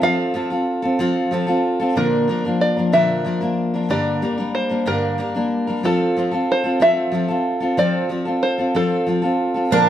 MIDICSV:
0, 0, Header, 1, 3, 480
1, 0, Start_track
1, 0, Key_signature, -1, "major"
1, 0, Tempo, 645856
1, 17, Time_signature, 6, 3, 24, 8
1, 7351, End_track
2, 0, Start_track
2, 0, Title_t, "Five-string banjo"
2, 0, Program_c, 0, 105
2, 24, Note_on_c, 0, 77, 71
2, 952, Note_off_c, 0, 77, 0
2, 1466, Note_on_c, 0, 70, 53
2, 1942, Note_on_c, 0, 74, 57
2, 1957, Note_off_c, 0, 70, 0
2, 2177, Note_off_c, 0, 74, 0
2, 2180, Note_on_c, 0, 76, 60
2, 2870, Note_off_c, 0, 76, 0
2, 2903, Note_on_c, 0, 74, 57
2, 3376, Note_off_c, 0, 74, 0
2, 3379, Note_on_c, 0, 72, 57
2, 3623, Note_on_c, 0, 70, 57
2, 3627, Note_off_c, 0, 72, 0
2, 4132, Note_off_c, 0, 70, 0
2, 4350, Note_on_c, 0, 69, 57
2, 4839, Note_off_c, 0, 69, 0
2, 4843, Note_on_c, 0, 72, 60
2, 5056, Note_off_c, 0, 72, 0
2, 5070, Note_on_c, 0, 76, 67
2, 5784, Note_off_c, 0, 76, 0
2, 5787, Note_on_c, 0, 74, 63
2, 6260, Note_off_c, 0, 74, 0
2, 6263, Note_on_c, 0, 72, 58
2, 6509, Note_off_c, 0, 72, 0
2, 6511, Note_on_c, 0, 69, 58
2, 7016, Note_off_c, 0, 69, 0
2, 7234, Note_on_c, 0, 70, 59
2, 7351, Note_off_c, 0, 70, 0
2, 7351, End_track
3, 0, Start_track
3, 0, Title_t, "Steel-string acoustic guitar"
3, 0, Program_c, 1, 25
3, 12, Note_on_c, 1, 53, 52
3, 21, Note_on_c, 1, 60, 58
3, 25, Note_on_c, 1, 65, 61
3, 27, Note_on_c, 1, 69, 57
3, 242, Note_off_c, 1, 53, 0
3, 249, Note_off_c, 1, 60, 0
3, 251, Note_on_c, 1, 53, 45
3, 255, Note_off_c, 1, 65, 0
3, 258, Note_on_c, 1, 60, 44
3, 262, Note_off_c, 1, 69, 0
3, 264, Note_on_c, 1, 65, 53
3, 271, Note_on_c, 1, 69, 45
3, 364, Note_off_c, 1, 69, 0
3, 373, Note_off_c, 1, 65, 0
3, 373, Note_on_c, 1, 69, 37
3, 374, Note_off_c, 1, 53, 0
3, 378, Note_off_c, 1, 60, 0
3, 382, Note_on_c, 1, 65, 33
3, 394, Note_on_c, 1, 60, 30
3, 603, Note_off_c, 1, 69, 0
3, 612, Note_on_c, 1, 69, 43
3, 613, Note_off_c, 1, 65, 0
3, 621, Note_on_c, 1, 65, 38
3, 626, Note_off_c, 1, 60, 0
3, 634, Note_on_c, 1, 60, 33
3, 735, Note_off_c, 1, 60, 0
3, 735, Note_off_c, 1, 69, 0
3, 736, Note_on_c, 1, 53, 64
3, 738, Note_off_c, 1, 65, 0
3, 743, Note_on_c, 1, 60, 66
3, 746, Note_on_c, 1, 65, 66
3, 752, Note_on_c, 1, 69, 61
3, 964, Note_off_c, 1, 53, 0
3, 973, Note_off_c, 1, 60, 0
3, 973, Note_on_c, 1, 53, 48
3, 980, Note_off_c, 1, 65, 0
3, 982, Note_on_c, 1, 60, 51
3, 985, Note_off_c, 1, 69, 0
3, 989, Note_on_c, 1, 65, 49
3, 993, Note_on_c, 1, 69, 58
3, 1081, Note_off_c, 1, 69, 0
3, 1090, Note_on_c, 1, 69, 42
3, 1092, Note_off_c, 1, 65, 0
3, 1096, Note_off_c, 1, 53, 0
3, 1100, Note_off_c, 1, 60, 0
3, 1101, Note_on_c, 1, 65, 43
3, 1111, Note_on_c, 1, 60, 33
3, 1326, Note_off_c, 1, 69, 0
3, 1335, Note_off_c, 1, 65, 0
3, 1335, Note_on_c, 1, 69, 42
3, 1344, Note_on_c, 1, 65, 35
3, 1345, Note_off_c, 1, 60, 0
3, 1355, Note_on_c, 1, 60, 35
3, 1453, Note_on_c, 1, 46, 48
3, 1457, Note_off_c, 1, 69, 0
3, 1459, Note_off_c, 1, 60, 0
3, 1459, Note_on_c, 1, 50, 49
3, 1460, Note_off_c, 1, 65, 0
3, 1462, Note_on_c, 1, 53, 47
3, 1462, Note_on_c, 1, 58, 49
3, 1463, Note_on_c, 1, 62, 59
3, 1467, Note_on_c, 1, 70, 56
3, 1684, Note_off_c, 1, 53, 0
3, 1693, Note_on_c, 1, 53, 41
3, 1694, Note_off_c, 1, 58, 0
3, 1696, Note_off_c, 1, 46, 0
3, 1699, Note_off_c, 1, 50, 0
3, 1701, Note_off_c, 1, 62, 0
3, 1703, Note_off_c, 1, 70, 0
3, 1703, Note_on_c, 1, 58, 43
3, 1711, Note_on_c, 1, 62, 40
3, 1717, Note_on_c, 1, 70, 44
3, 1809, Note_off_c, 1, 70, 0
3, 1816, Note_off_c, 1, 53, 0
3, 1817, Note_off_c, 1, 62, 0
3, 1818, Note_on_c, 1, 70, 35
3, 1821, Note_off_c, 1, 58, 0
3, 1826, Note_on_c, 1, 62, 32
3, 1833, Note_on_c, 1, 58, 27
3, 1841, Note_on_c, 1, 53, 27
3, 2046, Note_off_c, 1, 70, 0
3, 2053, Note_off_c, 1, 62, 0
3, 2055, Note_on_c, 1, 70, 31
3, 2062, Note_off_c, 1, 58, 0
3, 2062, Note_on_c, 1, 62, 30
3, 2068, Note_off_c, 1, 53, 0
3, 2070, Note_on_c, 1, 58, 30
3, 2077, Note_on_c, 1, 53, 29
3, 2170, Note_off_c, 1, 53, 0
3, 2173, Note_on_c, 1, 46, 54
3, 2174, Note_off_c, 1, 58, 0
3, 2175, Note_off_c, 1, 62, 0
3, 2176, Note_on_c, 1, 50, 51
3, 2177, Note_off_c, 1, 70, 0
3, 2179, Note_on_c, 1, 53, 51
3, 2183, Note_on_c, 1, 58, 49
3, 2184, Note_on_c, 1, 62, 54
3, 2189, Note_on_c, 1, 70, 55
3, 2403, Note_off_c, 1, 53, 0
3, 2412, Note_on_c, 1, 53, 38
3, 2413, Note_off_c, 1, 58, 0
3, 2416, Note_off_c, 1, 46, 0
3, 2418, Note_off_c, 1, 50, 0
3, 2420, Note_off_c, 1, 62, 0
3, 2422, Note_on_c, 1, 58, 40
3, 2424, Note_off_c, 1, 70, 0
3, 2428, Note_on_c, 1, 62, 47
3, 2434, Note_on_c, 1, 70, 44
3, 2524, Note_off_c, 1, 70, 0
3, 2531, Note_off_c, 1, 62, 0
3, 2533, Note_on_c, 1, 70, 39
3, 2536, Note_off_c, 1, 53, 0
3, 2538, Note_off_c, 1, 58, 0
3, 2540, Note_on_c, 1, 62, 35
3, 2547, Note_on_c, 1, 58, 30
3, 2554, Note_on_c, 1, 53, 32
3, 2769, Note_off_c, 1, 70, 0
3, 2774, Note_off_c, 1, 62, 0
3, 2778, Note_on_c, 1, 70, 32
3, 2783, Note_off_c, 1, 58, 0
3, 2783, Note_on_c, 1, 62, 33
3, 2787, Note_off_c, 1, 53, 0
3, 2791, Note_on_c, 1, 58, 31
3, 2795, Note_on_c, 1, 53, 27
3, 2890, Note_on_c, 1, 43, 52
3, 2891, Note_off_c, 1, 58, 0
3, 2894, Note_off_c, 1, 62, 0
3, 2895, Note_off_c, 1, 53, 0
3, 2895, Note_off_c, 1, 70, 0
3, 2896, Note_on_c, 1, 50, 50
3, 2898, Note_on_c, 1, 55, 49
3, 2900, Note_on_c, 1, 58, 56
3, 2903, Note_on_c, 1, 62, 59
3, 2904, Note_on_c, 1, 70, 55
3, 3127, Note_off_c, 1, 55, 0
3, 3132, Note_off_c, 1, 58, 0
3, 3135, Note_off_c, 1, 43, 0
3, 3136, Note_on_c, 1, 55, 41
3, 3138, Note_off_c, 1, 50, 0
3, 3138, Note_off_c, 1, 62, 0
3, 3140, Note_on_c, 1, 58, 44
3, 3142, Note_off_c, 1, 70, 0
3, 3147, Note_on_c, 1, 62, 43
3, 3155, Note_on_c, 1, 70, 43
3, 3244, Note_off_c, 1, 70, 0
3, 3251, Note_off_c, 1, 62, 0
3, 3253, Note_on_c, 1, 70, 31
3, 3258, Note_off_c, 1, 55, 0
3, 3260, Note_off_c, 1, 58, 0
3, 3260, Note_on_c, 1, 62, 30
3, 3268, Note_on_c, 1, 58, 28
3, 3272, Note_on_c, 1, 55, 28
3, 3480, Note_off_c, 1, 70, 0
3, 3487, Note_off_c, 1, 62, 0
3, 3489, Note_on_c, 1, 70, 36
3, 3494, Note_off_c, 1, 58, 0
3, 3496, Note_on_c, 1, 62, 32
3, 3500, Note_off_c, 1, 55, 0
3, 3502, Note_on_c, 1, 58, 31
3, 3509, Note_on_c, 1, 55, 28
3, 3606, Note_off_c, 1, 55, 0
3, 3609, Note_on_c, 1, 43, 52
3, 3610, Note_off_c, 1, 58, 0
3, 3613, Note_off_c, 1, 62, 0
3, 3615, Note_off_c, 1, 70, 0
3, 3615, Note_on_c, 1, 50, 55
3, 3615, Note_on_c, 1, 55, 52
3, 3619, Note_on_c, 1, 58, 58
3, 3622, Note_on_c, 1, 62, 56
3, 3624, Note_on_c, 1, 70, 57
3, 3840, Note_off_c, 1, 55, 0
3, 3847, Note_off_c, 1, 58, 0
3, 3849, Note_on_c, 1, 55, 42
3, 3855, Note_off_c, 1, 43, 0
3, 3855, Note_off_c, 1, 62, 0
3, 3856, Note_off_c, 1, 70, 0
3, 3856, Note_on_c, 1, 58, 44
3, 3858, Note_off_c, 1, 50, 0
3, 3863, Note_on_c, 1, 62, 48
3, 3865, Note_on_c, 1, 70, 44
3, 3964, Note_off_c, 1, 70, 0
3, 3972, Note_off_c, 1, 62, 0
3, 3973, Note_on_c, 1, 70, 37
3, 3975, Note_off_c, 1, 55, 0
3, 3978, Note_off_c, 1, 58, 0
3, 3981, Note_on_c, 1, 62, 36
3, 3989, Note_on_c, 1, 58, 33
3, 3993, Note_on_c, 1, 55, 34
3, 4206, Note_off_c, 1, 70, 0
3, 4213, Note_off_c, 1, 62, 0
3, 4215, Note_on_c, 1, 70, 34
3, 4221, Note_off_c, 1, 58, 0
3, 4222, Note_on_c, 1, 62, 34
3, 4227, Note_off_c, 1, 55, 0
3, 4230, Note_on_c, 1, 58, 30
3, 4235, Note_on_c, 1, 55, 28
3, 4331, Note_off_c, 1, 55, 0
3, 4334, Note_on_c, 1, 53, 47
3, 4338, Note_off_c, 1, 70, 0
3, 4339, Note_off_c, 1, 58, 0
3, 4341, Note_off_c, 1, 62, 0
3, 4342, Note_on_c, 1, 60, 54
3, 4344, Note_on_c, 1, 65, 55
3, 4351, Note_on_c, 1, 69, 59
3, 4574, Note_off_c, 1, 53, 0
3, 4581, Note_off_c, 1, 60, 0
3, 4582, Note_off_c, 1, 65, 0
3, 4583, Note_on_c, 1, 53, 43
3, 4586, Note_off_c, 1, 69, 0
3, 4590, Note_on_c, 1, 60, 41
3, 4596, Note_on_c, 1, 65, 42
3, 4600, Note_on_c, 1, 69, 48
3, 4684, Note_off_c, 1, 69, 0
3, 4693, Note_on_c, 1, 69, 34
3, 4697, Note_off_c, 1, 65, 0
3, 4701, Note_off_c, 1, 53, 0
3, 4705, Note_off_c, 1, 60, 0
3, 4706, Note_on_c, 1, 65, 31
3, 4714, Note_on_c, 1, 60, 28
3, 4924, Note_off_c, 1, 69, 0
3, 4933, Note_on_c, 1, 69, 34
3, 4934, Note_off_c, 1, 65, 0
3, 4943, Note_on_c, 1, 65, 32
3, 4944, Note_off_c, 1, 60, 0
3, 4953, Note_on_c, 1, 60, 33
3, 5051, Note_off_c, 1, 60, 0
3, 5052, Note_on_c, 1, 53, 53
3, 5055, Note_off_c, 1, 65, 0
3, 5057, Note_off_c, 1, 69, 0
3, 5060, Note_on_c, 1, 60, 53
3, 5064, Note_on_c, 1, 65, 61
3, 5067, Note_on_c, 1, 69, 61
3, 5280, Note_off_c, 1, 53, 0
3, 5289, Note_on_c, 1, 53, 44
3, 5292, Note_off_c, 1, 60, 0
3, 5298, Note_off_c, 1, 65, 0
3, 5301, Note_on_c, 1, 60, 42
3, 5304, Note_off_c, 1, 69, 0
3, 5307, Note_on_c, 1, 65, 45
3, 5312, Note_on_c, 1, 69, 48
3, 5405, Note_off_c, 1, 69, 0
3, 5414, Note_on_c, 1, 69, 36
3, 5415, Note_off_c, 1, 53, 0
3, 5419, Note_off_c, 1, 65, 0
3, 5421, Note_off_c, 1, 60, 0
3, 5428, Note_on_c, 1, 65, 34
3, 5433, Note_on_c, 1, 60, 30
3, 5642, Note_off_c, 1, 69, 0
3, 5651, Note_on_c, 1, 69, 35
3, 5654, Note_off_c, 1, 65, 0
3, 5661, Note_off_c, 1, 60, 0
3, 5663, Note_on_c, 1, 65, 30
3, 5670, Note_on_c, 1, 60, 31
3, 5774, Note_off_c, 1, 60, 0
3, 5776, Note_off_c, 1, 69, 0
3, 5777, Note_on_c, 1, 53, 57
3, 5779, Note_off_c, 1, 65, 0
3, 5783, Note_on_c, 1, 60, 58
3, 5788, Note_on_c, 1, 65, 56
3, 5791, Note_on_c, 1, 69, 61
3, 6006, Note_off_c, 1, 53, 0
3, 6011, Note_off_c, 1, 60, 0
3, 6015, Note_on_c, 1, 53, 40
3, 6020, Note_on_c, 1, 60, 43
3, 6021, Note_off_c, 1, 65, 0
3, 6024, Note_off_c, 1, 69, 0
3, 6030, Note_on_c, 1, 65, 42
3, 6033, Note_on_c, 1, 69, 43
3, 6125, Note_off_c, 1, 69, 0
3, 6134, Note_on_c, 1, 69, 31
3, 6136, Note_off_c, 1, 65, 0
3, 6138, Note_off_c, 1, 53, 0
3, 6140, Note_off_c, 1, 60, 0
3, 6145, Note_on_c, 1, 65, 29
3, 6155, Note_on_c, 1, 60, 28
3, 6368, Note_off_c, 1, 69, 0
3, 6377, Note_off_c, 1, 65, 0
3, 6377, Note_on_c, 1, 69, 31
3, 6386, Note_off_c, 1, 60, 0
3, 6386, Note_on_c, 1, 65, 32
3, 6395, Note_on_c, 1, 60, 28
3, 6492, Note_off_c, 1, 60, 0
3, 6498, Note_off_c, 1, 65, 0
3, 6499, Note_off_c, 1, 69, 0
3, 6499, Note_on_c, 1, 53, 51
3, 6501, Note_on_c, 1, 60, 49
3, 6507, Note_on_c, 1, 65, 55
3, 6514, Note_on_c, 1, 69, 58
3, 6728, Note_off_c, 1, 53, 0
3, 6737, Note_off_c, 1, 60, 0
3, 6737, Note_on_c, 1, 53, 44
3, 6744, Note_off_c, 1, 65, 0
3, 6746, Note_on_c, 1, 60, 44
3, 6747, Note_off_c, 1, 69, 0
3, 6751, Note_on_c, 1, 65, 44
3, 6756, Note_on_c, 1, 69, 46
3, 6842, Note_off_c, 1, 69, 0
3, 6851, Note_on_c, 1, 69, 34
3, 6853, Note_off_c, 1, 65, 0
3, 6858, Note_off_c, 1, 53, 0
3, 6862, Note_on_c, 1, 65, 32
3, 6863, Note_off_c, 1, 60, 0
3, 6874, Note_on_c, 1, 60, 30
3, 7083, Note_off_c, 1, 69, 0
3, 7092, Note_on_c, 1, 69, 35
3, 7094, Note_off_c, 1, 65, 0
3, 7103, Note_on_c, 1, 65, 32
3, 7104, Note_off_c, 1, 60, 0
3, 7112, Note_on_c, 1, 60, 25
3, 7214, Note_on_c, 1, 46, 49
3, 7216, Note_off_c, 1, 69, 0
3, 7219, Note_on_c, 1, 50, 46
3, 7221, Note_off_c, 1, 60, 0
3, 7221, Note_off_c, 1, 65, 0
3, 7223, Note_on_c, 1, 53, 52
3, 7224, Note_on_c, 1, 58, 50
3, 7224, Note_on_c, 1, 62, 51
3, 7229, Note_on_c, 1, 70, 58
3, 7351, Note_off_c, 1, 46, 0
3, 7351, Note_off_c, 1, 50, 0
3, 7351, Note_off_c, 1, 53, 0
3, 7351, Note_off_c, 1, 58, 0
3, 7351, Note_off_c, 1, 62, 0
3, 7351, Note_off_c, 1, 70, 0
3, 7351, End_track
0, 0, End_of_file